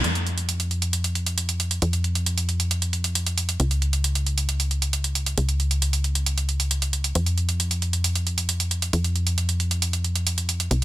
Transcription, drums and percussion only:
0.04 closed hi-hat medium
0.15 closed hi-hat medium
0.27 closed hi-hat soft
0.38 closed hi-hat soft
0.49 closed hi-hat medium
0.60 closed hi-hat medium
0.71 closed hi-hat soft
0.82 closed hi-hat medium
0.93 closed hi-hat medium
1.04 closed hi-hat soft
1.15 closed hi-hat soft
1.26 closed hi-hat medium
1.38 closed hi-hat medium
1.49 closed hi-hat soft
1.60 closed hi-hat medium
1.71 closed hi-hat soft
1.82 closed hi-hat medium
1.93 closed hi-hat soft
2.04 closed hi-hat soft
2.15 closed hi-hat soft
2.26 closed hi-hat medium
2.38 closed hi-hat soft
2.49 closed hi-hat soft
2.60 closed hi-hat medium
2.71 closed hi-hat medium
2.82 closed hi-hat soft
2.93 closed hi-hat soft
3.04 closed hi-hat soft
3.15 closed hi-hat medium
3.27 closed hi-hat soft
3.38 closed hi-hat medium
3.49 closed hi-hat soft
3.60 closed hi-hat medium
3.71 closed hi-hat soft
3.82 closed hi-hat soft
3.93 closed hi-hat soft
4.04 closed hi-hat medium
4.15 closed hi-hat soft
4.27 closed hi-hat soft
4.38 closed hi-hat medium
4.49 closed hi-hat medium
4.60 closed hi-hat soft
4.71 closed hi-hat soft
4.82 closed hi-hat soft
4.93 closed hi-hat medium
5.04 closed hi-hat soft
5.15 closed hi-hat soft
5.26 closed hi-hat soft
5.38 closed hi-hat medium
5.49 closed hi-hat soft
5.60 closed hi-hat soft
5.71 closed hi-hat soft
5.82 closed hi-hat medium
5.93 closed hi-hat soft
6.04 closed hi-hat soft
6.15 closed hi-hat soft
6.26 closed hi-hat medium
6.38 closed hi-hat soft
6.49 closed hi-hat soft
6.60 closed hi-hat soft
6.71 closed hi-hat medium
6.82 closed hi-hat soft
6.93 closed hi-hat soft
7.04 closed hi-hat soft
7.15 closed hi-hat medium
7.26 closed hi-hat soft
7.38 closed hi-hat soft
7.49 closed hi-hat soft
7.60 closed hi-hat medium
7.71 closed hi-hat soft
7.82 closed hi-hat soft
7.93 closed hi-hat soft
8.04 closed hi-hat medium
8.15 closed hi-hat soft
8.27 closed hi-hat soft
8.38 closed hi-hat soft
8.49 closed hi-hat medium
8.60 closed hi-hat soft
8.71 closed hi-hat soft
8.82 closed hi-hat soft
8.93 closed hi-hat medium
9.04 closed hi-hat soft
9.16 closed hi-hat soft
9.27 closed hi-hat soft
9.38 closed hi-hat medium
9.49 closed hi-hat soft
9.60 closed hi-hat soft
9.71 closed hi-hat medium
9.82 closed hi-hat medium
9.93 closed hi-hat soft
10.04 closed hi-hat soft
10.16 closed hi-hat soft
10.27 closed hi-hat medium
10.38 closed hi-hat soft
10.49 closed hi-hat soft
10.60 closed hi-hat soft
10.71 closed hi-hat medium

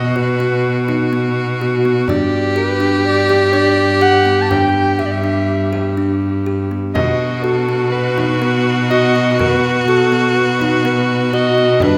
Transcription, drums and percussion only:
0.65 frame drum soft
0.88 frame drum soft
1.61 frame drum soft
2.08 frame drum medium
3.04 frame drum soft
3.28 frame drum soft
4.51 frame drum medium
4.76 frame drum soft
5.00 frame drum soft
5.73 frame drum soft
6.22 frame drum soft
6.71 frame drum soft
6.96 frame drum medium
7.94 frame drum soft
8.18 frame drum medium
8.91 frame drum soft
9.40 frame drum medium
10.37 frame drum soft
10.60 frame drum medium
11.32 frame drum soft
11.80 frame drum medium

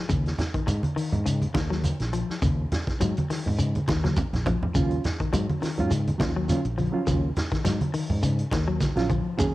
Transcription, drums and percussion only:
0.09 kick medium
0.09 closed hi-hat medium
0.09 high conga soft
0.09 low conga medium
0.09 shekere medium
0.26 snare soft
0.26 closed hi-hat soft
0.39 snare medium
0.39 closed hi-hat soft
0.39 high conga soft
0.39 low conga medium
0.39 shekere soft
0.54 kick medium
0.54 closed hi-hat soft
0.68 closed hi-hat medium
0.68 high conga medium
0.68 shekere medium
0.83 closed hi-hat soft
0.83 high conga medium
0.97 open hi-hat medium
0.97 shekere soft
1.13 closed hi-hat soft
1.13 low conga medium
1.26 closed hi-hat medium
1.26 high conga soft
1.26 shekere medium
1.42 closed hi-hat soft
1.42 high conga medium
1.55 kick medium
1.55 snare medium
1.55 closed hi-hat medium
1.55 high conga medium
1.55 shekere soft
1.72 snare soft
1.84 closed hi-hat medium
1.84 high conga medium
1.84 shekere medium
1.99 snare soft
1.99 closed hi-hat soft
2.13 closed hi-hat soft
2.13 shekere soft
2.30 snare soft
2.42 kick medium
2.42 closed hi-hat medium
2.42 high conga soft
2.42 low conga medium
2.42 shekere medium
2.72 snare medium
2.72 closed hi-hat medium
2.72 high conga soft
2.72 low conga medium
2.72 shekere soft
2.87 kick medium
2.87 snare soft
2.87 closed hi-hat soft
3.00 closed hi-hat medium
3.00 high conga medium
3.00 shekere medium
3.17 closed hi-hat soft
3.17 high conga medium
3.30 snare soft
3.30 open hi-hat medium
3.30 shekere soft
3.47 low conga medium
3.59 closed hi-hat medium
3.59 high conga soft
3.59 shekere medium
3.75 closed hi-hat soft
3.75 high conga medium
3.88 kick medium
3.88 snare medium
3.88 closed hi-hat soft
3.88 high conga medium
3.88 shekere soft
4.05 snare soft
4.05 high conga medium
4.16 kick medium
4.16 closed hi-hat medium
4.16 low conga medium
4.16 shekere medium
4.33 snare soft
4.33 closed hi-hat soft
4.33 low conga medium
4.46 kick medium
4.46 closed hi-hat soft
4.46 low conga medium
4.46 shekere soft
4.63 low conga medium
4.75 kick medium
4.75 closed hi-hat medium
4.75 high conga soft
4.75 low conga medium
4.75 shekere medium
4.91 closed hi-hat soft
5.04 snare medium
5.04 closed hi-hat soft
5.04 high conga soft
5.04 low conga medium
5.04 shekere soft
5.20 kick medium
5.20 closed hi-hat soft
5.34 closed hi-hat medium
5.34 high conga medium
5.34 shekere medium
5.50 closed hi-hat soft
5.50 high conga medium
5.62 snare soft
5.62 open hi-hat medium
5.62 shekere soft
5.78 closed hi-hat soft
5.78 low conga medium
5.91 closed hi-hat medium
5.91 shekere medium
6.07 closed hi-hat soft
6.07 high conga medium
6.20 kick medium
6.20 snare medium
6.20 closed hi-hat soft
6.20 high conga medium
6.20 shekere soft
6.49 closed hi-hat medium
6.49 high conga medium
6.49 shekere medium
6.65 closed hi-hat soft
6.78 closed hi-hat soft
6.78 high conga medium
6.78 shekere soft
7.07 kick medium
7.07 closed hi-hat medium
7.07 high conga soft
7.07 low conga medium
7.07 shekere medium
7.37 snare medium
7.37 closed hi-hat medium
7.37 high conga soft
7.37 low conga medium
7.37 shekere soft
7.52 kick medium
7.52 snare soft
7.52 closed hi-hat soft
7.65 snare soft
7.65 closed hi-hat medium
7.65 high conga medium
7.65 shekere medium
7.81 closed hi-hat soft
7.81 high conga medium
7.94 open hi-hat medium
7.94 shekere soft
8.10 low conga medium
8.23 closed hi-hat medium
8.23 high conga soft
8.23 shekere medium
8.39 closed hi-hat soft
8.51 kick medium
8.51 snare medium
8.51 closed hi-hat soft
8.51 high conga medium
8.51 shekere soft
8.81 kick medium
8.81 snare soft
8.81 closed hi-hat medium
8.81 high conga medium
8.81 shekere medium
8.96 snare soft
8.96 closed hi-hat soft
9.10 kick medium
9.10 closed hi-hat soft
9.10 high conga medium
9.10 shekere soft
9.39 kick medium
9.39 closed hi-hat medium
9.39 high conga soft
9.39 low conga medium
9.39 shekere medium

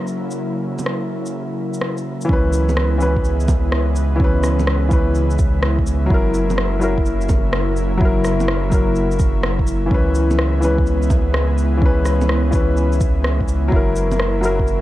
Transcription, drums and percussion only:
0.07 shaker soft
0.31 shaker soft
0.79 low bongo soft
0.79 shaker medium
0.86 cross-stick loud
1.26 shaker medium
1.74 shaker soft
1.81 cross-stick loud
1.97 shaker soft
2.21 shaker medium
2.29 kick loud
2.53 shaker medium
2.69 low bongo soft
2.69 shaker soft
2.77 cross-stick loud
3.01 shaker medium
3.17 kick medium
3.25 shaker soft
3.40 shaker soft
3.48 kick loud
3.48 low bongo medium
3.48 shaker medium
3.72 cross-stick loud
3.96 shaker medium
4.20 kick loud
4.43 cross-stick medium
4.43 shaker medium
4.59 low bongo soft
4.59 shaker soft
4.67 cross-stick loud
4.91 kick loud
4.91 shaker medium
5.15 shaker soft
5.31 shaker soft
5.39 kick loud
5.39 shaker medium
5.63 cross-stick loud
5.79 kick medium
5.87 shaker medium
6.10 kick loud
6.34 shaker medium
6.50 low bongo soft
6.50 shaker soft
6.58 cross-stick loud
6.82 shaker medium
6.98 kick medium
7.06 shaker soft
7.21 shaker soft
7.29 kick loud
7.29 low bongo medium
7.29 shaker medium
7.53 cross-stick loud
7.77 shaker medium
8.01 kick loud
8.25 cross-stick medium
8.25 shaker medium
8.40 low bongo soft
8.40 shaker soft
8.48 cross-stick loud
8.72 kick loud
8.72 shaker medium
8.96 shaker soft
9.12 shaker soft
9.19 kick loud
9.19 shaker medium
9.43 cross-stick loud
9.59 kick medium
9.67 shaker medium
9.91 kick loud
10.15 shaker medium
10.31 low bongo soft
10.31 shaker soft
10.39 cross-stick loud
10.63 shaker medium
10.78 kick medium
10.86 shaker soft
11.02 shaker soft
11.10 kick loud
11.10 low bongo medium
11.10 shaker medium
11.34 cross-stick loud
11.58 shaker medium
11.82 kick loud
12.05 cross-stick medium
12.05 shaker medium
12.21 low bongo soft
12.21 shaker soft
12.29 cross-stick loud
12.53 kick loud
12.53 shaker medium
12.77 shaker soft
12.93 shaker soft
13.01 kick loud
13.01 shaker medium
13.24 cross-stick loud
13.40 kick medium
13.48 shaker medium
13.72 kick loud
13.96 shaker medium
14.12 low bongo soft
14.12 shaker soft
14.20 cross-stick loud
14.43 shaker medium
14.59 kick medium
14.67 shaker soft

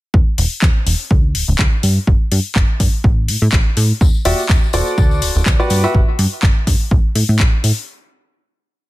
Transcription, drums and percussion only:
0.14 kick loud
0.38 open hi-hat loud
0.62 kick loud
0.62 clap loud
0.87 open hi-hat loud
1.11 kick loud
1.35 open hi-hat loud
1.59 kick loud
1.59 clap loud
1.83 open hi-hat loud
2.07 kick loud
2.32 open hi-hat loud
2.56 kick loud
2.56 clap loud
2.80 kick medium
2.80 open hi-hat loud
3.04 kick loud
3.28 open hi-hat loud
3.52 kick loud
3.52 clap loud
3.77 open hi-hat loud
4.01 kick loud
4.01 tambourine medium
4.14 tambourine soft
4.25 open hi-hat loud
4.25 tambourine loud
4.39 tambourine soft
4.49 kick loud
4.49 clap loud
4.49 tambourine soft
4.63 tambourine soft
4.73 open hi-hat loud
4.73 tambourine medium
4.86 tambourine soft
4.98 kick loud
4.98 tambourine soft
5.11 tambourine soft
5.22 open hi-hat loud
5.22 tambourine loud
5.35 tambourine soft
5.46 kick loud
5.46 clap loud
5.46 tambourine medium
5.60 tambourine soft
5.70 open hi-hat loud
5.70 tambourine medium
5.84 tambourine soft
5.95 kick loud
6.19 open hi-hat loud
6.43 kick loud
6.43 clap loud
6.67 kick medium
6.67 open hi-hat loud
6.91 kick loud
7.15 open hi-hat loud
7.39 kick loud
7.39 clap loud
7.64 open hi-hat loud

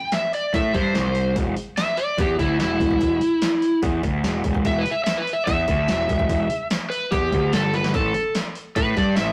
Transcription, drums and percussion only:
0.12 snare medium
0.12 open hi-hat medium
0.33 open hi-hat soft
0.54 kick medium
0.54 open hi-hat medium
0.74 kick medium
0.74 open hi-hat soft
0.95 snare medium
0.95 open hi-hat medium
1.15 open hi-hat soft
1.36 kick medium
1.36 open hi-hat medium
1.57 open hi-hat medium
1.77 snare medium
1.77 open hi-hat medium
1.97 open hi-hat soft
2.18 kick loud
2.18 open hi-hat medium
2.39 kick medium
2.39 open hi-hat medium
2.60 snare medium
2.60 open hi-hat medium
2.80 kick medium
2.80 open hi-hat medium
2.91 kick medium
3.01 kick medium
3.01 open hi-hat medium
3.21 open hi-hat medium
3.42 snare loud
3.42 open hi-hat medium
3.62 open hi-hat soft
3.83 kick medium
3.83 open hi-hat medium
4.03 kick medium
4.03 open hi-hat soft
4.24 snare medium
4.24 open hi-hat medium
4.44 kick medium
4.44 open hi-hat medium
4.55 kick medium
4.65 kick medium
4.65 open hi-hat medium
4.86 open hi-hat medium
5.06 snare loud
5.06 open hi-hat medium
5.27 open hi-hat soft
5.47 kick medium
5.47 open hi-hat medium
5.68 kick medium
5.68 open hi-hat medium
5.88 snare medium
5.88 open hi-hat medium
6.09 kick medium
6.09 open hi-hat medium
6.19 kick medium
6.29 kick medium
6.29 open hi-hat medium
6.50 open hi-hat medium
6.70 snare loud
6.70 open hi-hat medium
6.92 open hi-hat medium
7.12 kick loud
7.12 open hi-hat medium
7.32 kick medium
7.32 open hi-hat soft
7.53 snare loud
7.53 open hi-hat medium
7.74 open hi-hat soft
7.74 high tom medium
7.84 snare medium
7.94 kick loud
7.94 open hi-hat medium
8.14 open hi-hat medium
8.35 snare loud
8.35 open hi-hat medium
8.55 open hi-hat soft
8.76 kick loud
8.76 open hi-hat medium
8.97 kick medium
8.97 open hi-hat medium
9.16 snare loud
9.16 open hi-hat medium

